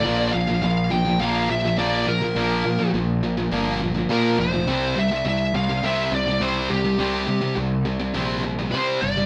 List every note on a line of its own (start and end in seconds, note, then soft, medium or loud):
0.00 0.32 D5 medium
0.05 0.32 A#1 medium
0.05 0.32 A#2 loud
0.05 0.31 F3 loud
0.05 0.32 A#3 loud
0.33 0.61 A#1 medium
0.33 0.46 A#2 medium
0.33 0.46 F3 medium
0.33 0.60 F5 medium
0.47 0.61 A#2 medium
0.47 0.61 F3 medium
0.62 0.90 A#1 loud
0.62 0.88 A#2 medium
0.62 0.88 F3 medium
0.62 0.92 F5 medium
0.90 1.19 A#1 loud
0.90 1.04 A#2 medium
0.90 1.03 F3 medium
0.90 1.18 G5 loud
1.05 1.18 A#2 medium
1.05 1.19 F3 medium
1.19 1.47 A#1 loud
1.19 1.47 A#2 medium
1.19 1.47 F3 loud
1.19 1.48 A#3 loud
1.19 1.47 F5 loud
1.49 1.76 A#1 loud
1.49 1.63 A#2 medium
1.49 1.63 F3 medium
1.49 1.78 E5 loud
1.64 1.77 A#2 medium
1.64 1.77 F3 loud
1.78 2.05 A#1 loud
1.78 2.05 A#2 medium
1.78 2.06 F3 loud
1.78 2.06 A#3 loud
1.78 2.08 D5 medium
2.07 2.34 A#1 medium
2.07 2.21 A#2 medium
2.07 2.20 F3 loud
2.07 2.90 A#4 medium
2.21 2.35 A#2 medium
2.21 2.35 F3 medium
2.36 2.63 A#1 loud
2.36 2.63 A#2 loud
2.36 2.63 F3 loud
2.36 2.63 A#3 loud
2.65 2.92 A#2 medium
2.65 2.78 A#2 medium
2.65 2.78 F3 medium
2.79 2.92 A#2 medium
2.79 2.93 F3 medium
2.94 3.48 A#1 medium
2.94 3.20 A#2 medium
2.94 3.20 F3 medium
3.23 3.36 A#2 medium
3.23 3.36 F3 medium
3.37 3.50 A#2 medium
3.37 3.51 F3 medium
3.51 4.05 G1 medium
3.51 3.79 A#2 loud
3.51 3.79 F3 loud
3.51 3.79 A#3 loud
3.80 3.93 A#2 medium
3.80 3.93 F3 medium
3.94 4.08 A#2 medium
3.94 4.08 F3 loud
4.09 4.37 A#2 medium
4.09 4.36 A#2 medium
4.09 4.37 F3 loud
4.09 4.37 A#3 loud
4.09 4.40 A#4 medium
4.38 4.65 F1 medium
4.38 4.52 A#2 medium
4.38 4.51 F3 loud
4.38 4.99 C5 loud
4.52 4.67 A#2 medium
4.52 4.67 F3 medium
4.67 4.94 C2 loud
4.67 4.94 C3 loud
4.67 4.94 G3 loud
4.67 4.95 C4 loud
4.95 5.23 C2 medium
4.95 5.10 C3 medium
4.95 5.10 G3 medium
4.95 5.25 E5 loud
5.11 5.23 C3 medium
5.11 5.24 G3 medium
5.25 5.52 C2 loud
5.25 5.51 C3 medium
5.25 5.51 G3 loud
5.25 5.55 E5 loud
5.53 5.81 C2 loud
5.53 5.68 C3 medium
5.53 5.67 G3 loud
5.53 5.82 F5 loud
5.69 5.82 C3 medium
5.69 5.82 G3 medium
5.83 6.10 C2 loud
5.83 6.10 C3 medium
5.83 6.10 G3 loud
5.83 6.11 C4 loud
5.83 6.14 E5 loud
6.12 6.39 C2 loud
6.12 6.27 C3 medium
6.12 6.26 G3 medium
6.12 6.43 D5 loud
6.27 6.40 C3 medium
6.27 6.40 G3 loud
6.40 6.68 C2 medium
6.40 6.68 C3 medium
6.40 6.69 G3 loud
6.40 6.69 C4 loud
6.40 6.72 C5 medium
6.70 6.97 C2 medium
6.70 6.84 C3 medium
6.70 6.83 G3 medium
6.70 7.53 G4 medium
6.85 6.98 C3 medium
6.85 6.99 G3 medium
6.99 7.26 C2 medium
6.99 7.26 C3 loud
6.99 7.26 G3 loud
6.99 7.27 C4 loud
7.28 7.40 C3 medium
7.28 7.55 C3 medium
7.28 7.40 G3 medium
7.41 7.55 C3 medium
7.41 7.55 G3 medium
7.56 8.11 C2 loud
7.56 7.83 C3 medium
7.56 7.83 G3 medium
7.85 7.99 C3 medium
7.85 7.98 G3 medium
7.99 8.13 C3 medium
7.99 8.13 G3 medium
8.14 8.69 A#1 loud
8.14 8.42 C3 loud
8.14 8.42 G3 medium
8.14 8.42 C4 loud
8.44 8.57 C3 medium
8.44 8.57 G3 medium
8.59 8.72 C3 medium
8.59 8.72 G3 medium
8.72 9.00 C3 loud
8.72 9.00 C3 medium
8.72 9.00 G3 loud
8.72 9.01 C4 loud
8.72 9.02 C5 medium
9.01 9.26 G1 medium
9.01 9.16 C3 medium
9.01 9.16 G3 medium
9.01 9.26 D5 loud
9.17 9.26 C3 medium
9.17 9.26 G3 medium